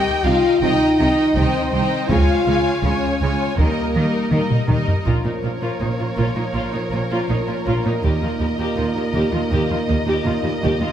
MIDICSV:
0, 0, Header, 1, 9, 480
1, 0, Start_track
1, 0, Tempo, 740741
1, 1361, Time_signature, 4, 2, 24, 8
1, 7078, End_track
2, 0, Start_track
2, 0, Title_t, "Violin section"
2, 0, Program_c, 0, 48
2, 0, Note_on_c, 0, 75, 49
2, 0, Note_on_c, 0, 79, 48
2, 159, Note_off_c, 0, 75, 0
2, 159, Note_off_c, 0, 79, 0
2, 166, Note_on_c, 0, 75, 47
2, 167, Note_on_c, 0, 79, 48
2, 382, Note_off_c, 0, 75, 0
2, 382, Note_off_c, 0, 79, 0
2, 389, Note_on_c, 0, 75, 57
2, 390, Note_on_c, 0, 79, 53
2, 623, Note_off_c, 0, 79, 0
2, 625, Note_off_c, 0, 75, 0
2, 630, Note_on_c, 0, 79, 45
2, 633, Note_on_c, 0, 75, 43
2, 864, Note_off_c, 0, 79, 0
2, 866, Note_off_c, 0, 75, 0
2, 872, Note_on_c, 0, 79, 42
2, 874, Note_on_c, 0, 75, 45
2, 1109, Note_off_c, 0, 75, 0
2, 1112, Note_off_c, 0, 79, 0
2, 1117, Note_on_c, 0, 75, 43
2, 1120, Note_on_c, 0, 79, 39
2, 1350, Note_on_c, 0, 73, 44
2, 1354, Note_off_c, 0, 75, 0
2, 1355, Note_off_c, 0, 79, 0
2, 1356, Note_on_c, 0, 80, 45
2, 1591, Note_off_c, 0, 73, 0
2, 1594, Note_off_c, 0, 80, 0
2, 1598, Note_on_c, 0, 73, 44
2, 1603, Note_on_c, 0, 80, 40
2, 1834, Note_off_c, 0, 73, 0
2, 1837, Note_off_c, 0, 80, 0
2, 1852, Note_on_c, 0, 80, 37
2, 1853, Note_on_c, 0, 73, 42
2, 2081, Note_off_c, 0, 73, 0
2, 2082, Note_off_c, 0, 80, 0
2, 2089, Note_on_c, 0, 73, 39
2, 2089, Note_on_c, 0, 80, 33
2, 2320, Note_off_c, 0, 73, 0
2, 2320, Note_off_c, 0, 80, 0
2, 2331, Note_on_c, 0, 70, 43
2, 2334, Note_on_c, 0, 75, 45
2, 2561, Note_off_c, 0, 70, 0
2, 2562, Note_off_c, 0, 75, 0
2, 2570, Note_on_c, 0, 75, 34
2, 2573, Note_on_c, 0, 70, 37
2, 2801, Note_off_c, 0, 75, 0
2, 2802, Note_off_c, 0, 70, 0
2, 2807, Note_on_c, 0, 75, 40
2, 2811, Note_on_c, 0, 70, 31
2, 3037, Note_off_c, 0, 70, 0
2, 3037, Note_off_c, 0, 75, 0
2, 3044, Note_on_c, 0, 70, 38
2, 3045, Note_on_c, 0, 75, 36
2, 3278, Note_off_c, 0, 70, 0
2, 3278, Note_off_c, 0, 75, 0
2, 3287, Note_on_c, 0, 70, 38
2, 7078, Note_off_c, 0, 70, 0
2, 7078, End_track
3, 0, Start_track
3, 0, Title_t, "Violin section"
3, 0, Program_c, 1, 48
3, 0, Note_on_c, 1, 79, 74
3, 143, Note_off_c, 1, 79, 0
3, 163, Note_on_c, 1, 77, 62
3, 403, Note_off_c, 1, 77, 0
3, 406, Note_on_c, 1, 75, 57
3, 874, Note_off_c, 1, 75, 0
3, 888, Note_on_c, 1, 72, 52
3, 1360, Note_on_c, 1, 77, 58
3, 1364, Note_off_c, 1, 72, 0
3, 1839, Note_on_c, 1, 73, 48
3, 1840, Note_off_c, 1, 77, 0
3, 2320, Note_off_c, 1, 73, 0
3, 2324, Note_on_c, 1, 70, 45
3, 3042, Note_off_c, 1, 70, 0
3, 3281, Note_on_c, 1, 73, 34
3, 5177, Note_off_c, 1, 73, 0
3, 5203, Note_on_c, 1, 75, 45
3, 7078, Note_off_c, 1, 75, 0
3, 7078, End_track
4, 0, Start_track
4, 0, Title_t, "Viola section"
4, 0, Program_c, 2, 48
4, 0, Note_on_c, 2, 51, 47
4, 0, Note_on_c, 2, 63, 41
4, 149, Note_off_c, 2, 51, 0
4, 151, Note_off_c, 2, 63, 0
4, 157, Note_on_c, 2, 51, 45
4, 158, Note_on_c, 2, 63, 42
4, 395, Note_off_c, 2, 51, 0
4, 395, Note_off_c, 2, 63, 0
4, 403, Note_on_c, 2, 63, 48
4, 404, Note_on_c, 2, 51, 48
4, 627, Note_off_c, 2, 63, 0
4, 629, Note_off_c, 2, 51, 0
4, 635, Note_on_c, 2, 63, 51
4, 636, Note_on_c, 2, 51, 45
4, 871, Note_off_c, 2, 51, 0
4, 872, Note_off_c, 2, 63, 0
4, 878, Note_on_c, 2, 51, 51
4, 879, Note_on_c, 2, 63, 45
4, 1110, Note_off_c, 2, 51, 0
4, 1112, Note_off_c, 2, 63, 0
4, 1118, Note_on_c, 2, 51, 44
4, 1120, Note_on_c, 2, 63, 43
4, 1350, Note_on_c, 2, 56, 37
4, 1352, Note_on_c, 2, 65, 46
4, 1355, Note_off_c, 2, 51, 0
4, 1356, Note_off_c, 2, 63, 0
4, 1591, Note_off_c, 2, 56, 0
4, 1592, Note_off_c, 2, 65, 0
4, 1597, Note_on_c, 2, 56, 39
4, 1599, Note_on_c, 2, 65, 40
4, 1829, Note_off_c, 2, 56, 0
4, 1831, Note_off_c, 2, 65, 0
4, 1836, Note_on_c, 2, 56, 38
4, 1839, Note_on_c, 2, 65, 36
4, 2073, Note_off_c, 2, 65, 0
4, 2074, Note_off_c, 2, 56, 0
4, 2080, Note_on_c, 2, 56, 36
4, 2081, Note_on_c, 2, 65, 37
4, 2315, Note_on_c, 2, 55, 37
4, 2316, Note_off_c, 2, 56, 0
4, 2316, Note_off_c, 2, 65, 0
4, 2318, Note_on_c, 2, 63, 39
4, 2553, Note_off_c, 2, 55, 0
4, 2554, Note_off_c, 2, 63, 0
4, 2564, Note_on_c, 2, 55, 40
4, 2566, Note_on_c, 2, 63, 41
4, 2791, Note_off_c, 2, 63, 0
4, 2793, Note_off_c, 2, 55, 0
4, 2799, Note_on_c, 2, 63, 42
4, 2800, Note_on_c, 2, 55, 37
4, 3027, Note_off_c, 2, 55, 0
4, 3027, Note_off_c, 2, 63, 0
4, 3035, Note_on_c, 2, 55, 34
4, 3035, Note_on_c, 2, 63, 37
4, 3273, Note_off_c, 2, 55, 0
4, 3273, Note_off_c, 2, 63, 0
4, 3276, Note_on_c, 2, 65, 41
4, 3390, Note_off_c, 2, 65, 0
4, 3400, Note_on_c, 2, 63, 29
4, 3448, Note_off_c, 2, 63, 0
4, 3522, Note_on_c, 2, 65, 27
4, 3570, Note_off_c, 2, 65, 0
4, 3636, Note_on_c, 2, 65, 39
4, 3750, Note_off_c, 2, 65, 0
4, 3758, Note_on_c, 2, 63, 29
4, 3807, Note_off_c, 2, 63, 0
4, 3883, Note_on_c, 2, 65, 29
4, 3930, Note_off_c, 2, 65, 0
4, 3997, Note_on_c, 2, 65, 45
4, 4111, Note_off_c, 2, 65, 0
4, 4119, Note_on_c, 2, 63, 33
4, 4167, Note_off_c, 2, 63, 0
4, 4233, Note_on_c, 2, 65, 47
4, 4349, Note_off_c, 2, 65, 0
4, 4353, Note_on_c, 2, 63, 33
4, 4403, Note_off_c, 2, 63, 0
4, 4475, Note_on_c, 2, 65, 39
4, 4524, Note_off_c, 2, 65, 0
4, 4598, Note_on_c, 2, 65, 50
4, 4712, Note_off_c, 2, 65, 0
4, 4724, Note_on_c, 2, 63, 33
4, 4772, Note_off_c, 2, 63, 0
4, 4840, Note_on_c, 2, 65, 36
4, 4889, Note_off_c, 2, 65, 0
4, 4962, Note_on_c, 2, 65, 47
4, 5074, Note_off_c, 2, 65, 0
4, 5084, Note_on_c, 2, 63, 38
4, 5132, Note_off_c, 2, 63, 0
4, 5204, Note_on_c, 2, 67, 42
4, 5315, Note_off_c, 2, 67, 0
4, 5325, Note_on_c, 2, 65, 35
4, 5373, Note_off_c, 2, 65, 0
4, 5438, Note_on_c, 2, 67, 37
4, 5487, Note_off_c, 2, 67, 0
4, 5562, Note_on_c, 2, 67, 53
4, 5674, Note_off_c, 2, 67, 0
4, 5687, Note_on_c, 2, 65, 35
4, 5734, Note_off_c, 2, 65, 0
4, 5806, Note_on_c, 2, 67, 40
4, 5854, Note_off_c, 2, 67, 0
4, 5923, Note_on_c, 2, 67, 58
4, 6036, Note_off_c, 2, 67, 0
4, 6039, Note_on_c, 2, 65, 46
4, 6088, Note_off_c, 2, 65, 0
4, 6158, Note_on_c, 2, 67, 55
4, 6273, Note_off_c, 2, 67, 0
4, 6284, Note_on_c, 2, 65, 44
4, 6332, Note_off_c, 2, 65, 0
4, 6402, Note_on_c, 2, 67, 52
4, 6451, Note_off_c, 2, 67, 0
4, 6523, Note_on_c, 2, 67, 64
4, 6636, Note_off_c, 2, 67, 0
4, 6642, Note_on_c, 2, 65, 45
4, 6691, Note_off_c, 2, 65, 0
4, 6766, Note_on_c, 2, 67, 46
4, 6814, Note_off_c, 2, 67, 0
4, 6885, Note_on_c, 2, 67, 56
4, 6997, Note_off_c, 2, 67, 0
4, 7008, Note_on_c, 2, 65, 53
4, 7056, Note_off_c, 2, 65, 0
4, 7078, End_track
5, 0, Start_track
5, 0, Title_t, "French horn section"
5, 0, Program_c, 3, 60
5, 0, Note_on_c, 3, 67, 93
5, 154, Note_off_c, 3, 67, 0
5, 161, Note_on_c, 3, 65, 77
5, 401, Note_off_c, 3, 65, 0
5, 402, Note_on_c, 3, 63, 72
5, 872, Note_off_c, 3, 63, 0
5, 888, Note_on_c, 3, 60, 62
5, 1350, Note_on_c, 3, 65, 78
5, 1364, Note_off_c, 3, 60, 0
5, 1726, Note_off_c, 3, 65, 0
5, 1836, Note_on_c, 3, 61, 63
5, 2309, Note_off_c, 3, 61, 0
5, 2313, Note_on_c, 3, 58, 56
5, 3037, Note_off_c, 3, 58, 0
5, 3275, Note_on_c, 3, 58, 40
5, 3280, Note_on_c, 3, 61, 40
5, 5177, Note_off_c, 3, 61, 0
5, 5202, Note_on_c, 3, 63, 50
5, 7078, Note_off_c, 3, 58, 0
5, 7078, Note_off_c, 3, 63, 0
5, 7078, End_track
6, 0, Start_track
6, 0, Title_t, "Trombone section"
6, 0, Program_c, 4, 61
6, 3271, Note_on_c, 4, 53, 37
6, 3275, Note_on_c, 4, 46, 37
6, 5173, Note_off_c, 4, 53, 0
6, 5210, Note_on_c, 4, 58, 41
6, 7078, Note_off_c, 4, 46, 0
6, 7078, Note_off_c, 4, 58, 0
6, 7078, End_track
7, 0, Start_track
7, 0, Title_t, "Cello section"
7, 0, Program_c, 5, 48
7, 161, Note_on_c, 5, 48, 51
7, 213, Note_off_c, 5, 48, 0
7, 405, Note_on_c, 5, 48, 57
7, 457, Note_off_c, 5, 48, 0
7, 648, Note_on_c, 5, 48, 57
7, 700, Note_off_c, 5, 48, 0
7, 886, Note_on_c, 5, 48, 47
7, 938, Note_off_c, 5, 48, 0
7, 1121, Note_on_c, 5, 48, 42
7, 1173, Note_off_c, 5, 48, 0
7, 1363, Note_on_c, 5, 49, 53
7, 1415, Note_off_c, 5, 49, 0
7, 1601, Note_on_c, 5, 49, 47
7, 1653, Note_off_c, 5, 49, 0
7, 1842, Note_on_c, 5, 49, 47
7, 1894, Note_off_c, 5, 49, 0
7, 2088, Note_on_c, 5, 49, 44
7, 2140, Note_off_c, 5, 49, 0
7, 2326, Note_on_c, 5, 51, 40
7, 2378, Note_off_c, 5, 51, 0
7, 2560, Note_on_c, 5, 51, 44
7, 2611, Note_off_c, 5, 51, 0
7, 2791, Note_on_c, 5, 51, 41
7, 2843, Note_off_c, 5, 51, 0
7, 3033, Note_on_c, 5, 51, 42
7, 3085, Note_off_c, 5, 51, 0
7, 3279, Note_on_c, 5, 46, 48
7, 3327, Note_off_c, 5, 46, 0
7, 3398, Note_on_c, 5, 46, 30
7, 3447, Note_off_c, 5, 46, 0
7, 3519, Note_on_c, 5, 46, 34
7, 3568, Note_off_c, 5, 46, 0
7, 3638, Note_on_c, 5, 46, 44
7, 3687, Note_off_c, 5, 46, 0
7, 3765, Note_on_c, 5, 46, 29
7, 3812, Note_off_c, 5, 46, 0
7, 3884, Note_on_c, 5, 46, 33
7, 3932, Note_off_c, 5, 46, 0
7, 3996, Note_on_c, 5, 46, 46
7, 4045, Note_off_c, 5, 46, 0
7, 4116, Note_on_c, 5, 46, 28
7, 4165, Note_off_c, 5, 46, 0
7, 4234, Note_on_c, 5, 46, 43
7, 4284, Note_off_c, 5, 46, 0
7, 4366, Note_on_c, 5, 46, 36
7, 4413, Note_off_c, 5, 46, 0
7, 4493, Note_on_c, 5, 46, 38
7, 4539, Note_off_c, 5, 46, 0
7, 4611, Note_on_c, 5, 46, 50
7, 4657, Note_off_c, 5, 46, 0
7, 4726, Note_on_c, 5, 46, 34
7, 4773, Note_off_c, 5, 46, 0
7, 4843, Note_on_c, 5, 46, 39
7, 4891, Note_off_c, 5, 46, 0
7, 4967, Note_on_c, 5, 46, 49
7, 5014, Note_off_c, 5, 46, 0
7, 5086, Note_on_c, 5, 46, 35
7, 5134, Note_off_c, 5, 46, 0
7, 5199, Note_on_c, 5, 39, 51
7, 5248, Note_off_c, 5, 39, 0
7, 5324, Note_on_c, 5, 39, 35
7, 5372, Note_off_c, 5, 39, 0
7, 5442, Note_on_c, 5, 39, 36
7, 5491, Note_off_c, 5, 39, 0
7, 5561, Note_on_c, 5, 39, 51
7, 5610, Note_off_c, 5, 39, 0
7, 5680, Note_on_c, 5, 39, 39
7, 5729, Note_off_c, 5, 39, 0
7, 5800, Note_on_c, 5, 39, 39
7, 5849, Note_off_c, 5, 39, 0
7, 5920, Note_on_c, 5, 39, 57
7, 5969, Note_off_c, 5, 39, 0
7, 6041, Note_on_c, 5, 39, 42
7, 6090, Note_off_c, 5, 39, 0
7, 6162, Note_on_c, 5, 39, 50
7, 6211, Note_off_c, 5, 39, 0
7, 6284, Note_on_c, 5, 39, 40
7, 6332, Note_off_c, 5, 39, 0
7, 6404, Note_on_c, 5, 39, 45
7, 6452, Note_off_c, 5, 39, 0
7, 6521, Note_on_c, 5, 39, 62
7, 6570, Note_off_c, 5, 39, 0
7, 6646, Note_on_c, 5, 39, 49
7, 6694, Note_off_c, 5, 39, 0
7, 6760, Note_on_c, 5, 39, 46
7, 6809, Note_off_c, 5, 39, 0
7, 6878, Note_on_c, 5, 39, 59
7, 6928, Note_off_c, 5, 39, 0
7, 6999, Note_on_c, 5, 39, 46
7, 7049, Note_off_c, 5, 39, 0
7, 7078, End_track
8, 0, Start_track
8, 0, Title_t, "Double bass section"
8, 0, Program_c, 6, 48
8, 161, Note_on_c, 6, 36, 60
8, 213, Note_off_c, 6, 36, 0
8, 396, Note_on_c, 6, 36, 55
8, 448, Note_off_c, 6, 36, 0
8, 647, Note_on_c, 6, 36, 49
8, 698, Note_off_c, 6, 36, 0
8, 874, Note_on_c, 6, 36, 44
8, 926, Note_off_c, 6, 36, 0
8, 1119, Note_on_c, 6, 36, 41
8, 1170, Note_off_c, 6, 36, 0
8, 1357, Note_on_c, 6, 37, 50
8, 1409, Note_off_c, 6, 37, 0
8, 1597, Note_on_c, 6, 37, 44
8, 1649, Note_off_c, 6, 37, 0
8, 1840, Note_on_c, 6, 37, 43
8, 1892, Note_off_c, 6, 37, 0
8, 2081, Note_on_c, 6, 37, 49
8, 2133, Note_off_c, 6, 37, 0
8, 2319, Note_on_c, 6, 39, 42
8, 2371, Note_off_c, 6, 39, 0
8, 2558, Note_on_c, 6, 39, 46
8, 2610, Note_off_c, 6, 39, 0
8, 2798, Note_on_c, 6, 39, 39
8, 2849, Note_off_c, 6, 39, 0
8, 3044, Note_on_c, 6, 39, 34
8, 3096, Note_off_c, 6, 39, 0
8, 3284, Note_on_c, 6, 34, 49
8, 3332, Note_off_c, 6, 34, 0
8, 3519, Note_on_c, 6, 34, 32
8, 3567, Note_off_c, 6, 34, 0
8, 3763, Note_on_c, 6, 34, 29
8, 3810, Note_off_c, 6, 34, 0
8, 4000, Note_on_c, 6, 34, 47
8, 4048, Note_off_c, 6, 34, 0
8, 4242, Note_on_c, 6, 34, 45
8, 4290, Note_off_c, 6, 34, 0
8, 4480, Note_on_c, 6, 34, 32
8, 4529, Note_off_c, 6, 34, 0
8, 4728, Note_on_c, 6, 34, 30
8, 4775, Note_off_c, 6, 34, 0
8, 4965, Note_on_c, 6, 34, 41
8, 5013, Note_off_c, 6, 34, 0
8, 5210, Note_on_c, 6, 39, 53
8, 5256, Note_off_c, 6, 39, 0
8, 5443, Note_on_c, 6, 39, 34
8, 5491, Note_off_c, 6, 39, 0
8, 5682, Note_on_c, 6, 39, 39
8, 5731, Note_off_c, 6, 39, 0
8, 5923, Note_on_c, 6, 39, 62
8, 5972, Note_off_c, 6, 39, 0
8, 6168, Note_on_c, 6, 39, 58
8, 6215, Note_off_c, 6, 39, 0
8, 6411, Note_on_c, 6, 39, 47
8, 6458, Note_off_c, 6, 39, 0
8, 6646, Note_on_c, 6, 39, 49
8, 6694, Note_off_c, 6, 39, 0
8, 6893, Note_on_c, 6, 39, 64
8, 6940, Note_off_c, 6, 39, 0
8, 7078, End_track
9, 0, Start_track
9, 0, Title_t, "Taiko and cinematic ensemble drums"
9, 404, Note_on_c, 9, 41, 64
9, 469, Note_off_c, 9, 41, 0
9, 885, Note_on_c, 9, 41, 67
9, 949, Note_off_c, 9, 41, 0
9, 1356, Note_on_c, 9, 41, 81
9, 1421, Note_off_c, 9, 41, 0
9, 1833, Note_on_c, 9, 41, 65
9, 1898, Note_off_c, 9, 41, 0
9, 2322, Note_on_c, 9, 41, 62
9, 2387, Note_off_c, 9, 41, 0
9, 2794, Note_on_c, 9, 47, 64
9, 2859, Note_off_c, 9, 47, 0
9, 2919, Note_on_c, 9, 45, 78
9, 2984, Note_off_c, 9, 45, 0
9, 3037, Note_on_c, 9, 45, 71
9, 3102, Note_off_c, 9, 45, 0
9, 3162, Note_on_c, 9, 43, 86
9, 3227, Note_off_c, 9, 43, 0
9, 3282, Note_on_c, 9, 41, 38
9, 3347, Note_off_c, 9, 41, 0
9, 7078, End_track
0, 0, End_of_file